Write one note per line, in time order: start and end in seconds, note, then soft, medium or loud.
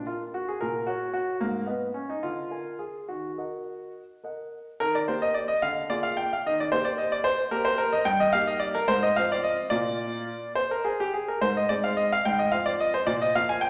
0.07 0.23 F4 medium
0.07 0.46 A#4 soft
0.07 0.47 F5 soft
0.34 0.48 F#4 medium
0.48 0.62 G#4 medium
0.61 0.88 A#2 medium
0.61 0.88 A#4 medium
0.87 1.11 F#4 medium
0.87 1.26 C#5 soft
0.87 1.26 F#5 soft
1.13 1.38 F#4 medium
1.41 1.68 G#2 medium
1.41 1.65 A#3 medium
1.66 1.92 B3 medium
1.66 2.07 B4 soft
1.66 2.07 D#5 soft
1.66 2.07 F5 soft
1.94 2.09 C#4 medium
2.10 2.23 D#4 medium
2.23 2.50 D3 medium
2.23 2.79 F4 medium
2.51 2.92 A#4 soft
2.51 2.92 F5 soft
2.51 2.93 G#5 soft
2.79 3.08 G#4 medium
3.08 3.37 D#3 soft
3.08 3.91 F#4 medium
3.38 4.00 A#4 soft
3.38 4.00 D#5 soft
3.38 4.00 F#5 soft
4.24 4.65 A#4 soft
4.24 4.65 D#5 soft
4.24 4.65 F#5 soft
4.80 5.08 D#3 medium
4.80 4.94 A#4 loud
4.95 5.09 D5 medium
5.08 5.48 A#3 medium
5.08 5.48 G4 medium
5.08 5.48 A#4 medium
5.08 5.22 C5 medium
5.22 5.36 D#5 loud
5.34 5.49 D5 medium
5.48 5.62 D#5 loud
5.62 5.90 D3 medium
5.62 5.87 F5 loud
5.90 6.29 A#3 medium
5.90 6.30 F4 medium
5.90 6.30 G#4 medium
5.90 6.04 D5 loud
6.03 6.17 F5 loud
6.17 6.31 G5 medium
6.33 6.46 F5 medium
6.46 6.72 D#3 medium
6.46 6.60 D#5 loud
6.60 6.73 D5 medium
6.72 7.30 A#3 medium
6.72 7.30 G4 medium
6.72 6.85 C5 loud
6.85 6.99 D5 medium
6.98 7.12 D#5 medium
7.12 7.25 D5 loud
7.24 7.41 C5 loud
7.51 7.90 A#3 medium
7.51 7.91 G4 medium
7.51 7.65 A#4 medium
7.65 7.79 C5 loud
7.78 7.92 A#4 loud
7.92 8.06 D#5 loud
8.05 8.32 G2 medium
8.05 8.19 G5 loud
8.20 8.34 D#5 loud
8.33 8.72 A#3 medium
8.33 8.73 D#4 medium
8.33 8.73 G4 medium
8.33 8.47 F5 loud
8.47 8.61 D#5 loud
8.60 8.74 D5 loud
8.75 8.88 A#4 loud
8.88 9.15 G#2 medium
8.88 9.02 C5 loud
9.03 9.16 D#5 loud
9.16 9.57 F3 medium
9.16 9.57 C4 medium
9.16 9.57 F4 medium
9.16 9.30 F5 loud
9.32 9.45 D5 loud
9.44 9.69 D#5 loud
9.70 10.30 A#2 medium
9.70 10.38 A#3 medium
9.70 10.38 F4 medium
9.70 10.51 D5 loud
10.55 10.69 C5 loud
10.71 10.84 A#4 medium
10.85 10.98 G#4 medium
11.00 11.13 G4 medium
11.14 11.27 G#4 medium
11.28 11.41 A#4 medium
11.41 11.67 G#2 medium
11.41 11.54 C5 loud
11.57 11.69 D#5 loud
11.69 12.09 G#3 medium
11.69 12.09 C4 medium
11.69 12.09 D#4 medium
11.69 11.82 D5 loud
11.84 11.96 F5 medium
11.97 12.10 D#5 loud
12.12 12.25 F5 loud
12.25 12.51 G#2 medium
12.25 12.38 G5 loud
12.39 12.52 D#5 loud
12.52 12.91 F3 medium
12.52 12.91 C4 medium
12.52 12.92 F4 medium
12.52 12.65 F5 loud
12.66 12.79 D5 loud
12.80 12.93 D#5 loud
12.94 13.07 C5 loud
13.07 13.32 A#2 medium
13.07 13.20 D5 loud
13.21 13.34 D#5 loud
13.35 13.70 F3 medium
13.35 13.70 A#3 medium
13.35 13.70 F4 medium
13.35 13.48 F5 loud
13.49 13.61 G#5 loud
13.61 13.70 G5 loud